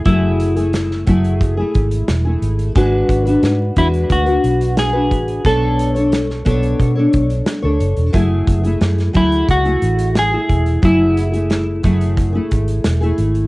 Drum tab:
HH |x-xxx-xxx-xxx-xx|x-xxx-xxxxxxx-xx|x-xxx-xxx-xxx-xx|x-xxxxxxxxxxx-xx|
SD |----oo------o---|----o-------o---|----oo------o---|----oo------o---|
BD |o-----o-o-o-----|o-o---o-o-----o-|o-----o-o-o-----|o-o---o-o-----o-|

HH |x-xxx-xxx-xxxxxx|
SD |----o-------o---|
BD |o-----o-o-o-----|